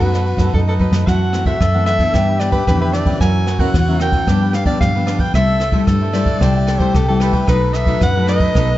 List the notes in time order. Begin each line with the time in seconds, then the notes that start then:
Already playing: F#4
0.00 F#2 B2 F#3 A3 D#4 A4 B4 D#5, kick, ride
0.14 A4 B4 D#5, cross-stick
0.26 muted cavaquinho stroke, ride
0.37 F#2 F#3 A3 D#4 A4 B4 D#5, kick, cross-stick, ride
0.53 F#2 D#4 A4, kick
0.67 A4 B4 D#5
0.79 F#3 A3 D#4 A4 B4 D#5, kick
0.92 F#2 A4 B4 D#5, snare
1.07 F#2 E3 A3 C4 E4 F#4 A4 C5 F#5, kick, cross-stick, ride
1.33 E3 A3 C4 E4 A4 C5 F#5, cross-stick, ride
1.46 E4 A4 C5 E5 F#5, kick, ride
1.61 F#2 A4, kick, cross-stick, ride
1.74 E3 A3 C4 A4 C5 F#5
1.86 E4 A4 C5 E5 F#5, cross-stick, ride
1.99 E3 B3 D4, kick, ride
2.14 G2 D4 G4 B4 E5, kick, cross-stick, ride
2.28 G4 B4 E5
2.39 E3 B3 D4 G4 B4 D5 E5, cross-stick, ride
2.52 D4 G4 B4 E5, kick, ride
2.67 F2 D3 E3 B3 D4 B4, kick, cross-stick, ride
2.80 G4 B4 E5
2.93 D4 G4 B4 D5 E5, cross-stick, ride
3.05 E3 A#3 C#4 G4 B4 E5, kick, ride
3.20 F#2 F#4 A#4 C#5 E5 G#5, kick, cross-stick, ride
3.46 F#4 A#4 C#5 E5, cross-stick, ride
3.59 E3 A#3 C#4 F#4 A#4 C#5 E5 F#5, kick, ride
3.74 E2 C#3, kick, cross-stick, ride
3.88 E3 A#3 C#4 A#4 C#5 E5
4.00 F#4 A#4 C#5 E5 G5, cross-stick, ride
4.12 kick, ride
4.27 G2 F3 B3 D4 G4 B4 F5, kick, cross-stick, ride
4.41 G4 B4 F5
4.53 D4 G4 B4 F5, cross-stick, ride
4.65 F3 B3 D4 G4 B4 D5 F5, kick, ride
4.81 G2 D3 F5, kick, cross-stick, ride
4.94 F3 B3 D4 G4 B4 F5
5.06 D4 G4 B4 F5, cross-stick, ride
5.19 G4 B4 F5 G5, kick, ride
5.34 C2 C3 G3 A3 E4 A4 C5 E5, kick, cross-stick, ride
5.60 E4 A4 C5 E5, cross-stick, ride
5.72 G3 A3 E4 A4 C5 E5, kick, ride
5.87 G2 A4, kick, cross-stick, ride
6.01 A4 C5 E5
6.13 G3 A3 E4 A4 C5 D5 E5, cross-stick, ride
6.26 kick, ride
6.40 C2 C3 G3 A3 E4 G4 A4 C5 E5 G5, kick, cross-stick, ride
6.55 C5 E5 G5
6.67 A4 C5 E5 G5, cross-stick, ride
6.79 G3 A3 E4 A4 C5 E5 G5, kick, ride
6.94 C2 C3 A4, kick, cross-stick, ride
7.08 G3 A3 E4 A4 C5 E5 G5
7.20 A4 B4 C5 E5 G5, cross-stick, ride
7.33 C5 E5 G5, kick, ride
7.48 B1 B2 F#3 A3 D#4 A4 B4 D#5, kick, cross-stick, ride
7.73 D#4 A4 B4 D#5 E5, cross-stick, ride
7.86 F#3 A3 D#4 A4 B4 D#5, kick, ride
8.01 F#2 F#5, kick, cross-stick, ride
8.16 F#3 A3 D#4 A4 B4 D#5
8.27 D#4 A4 B4 D#5, cross-stick, ride
8.40 kick, ride
8.55 B1 B2 F#3 A3 D#4 A4 B4 D#5, kick, cross-stick, ride
8.69 A4 B4 D#5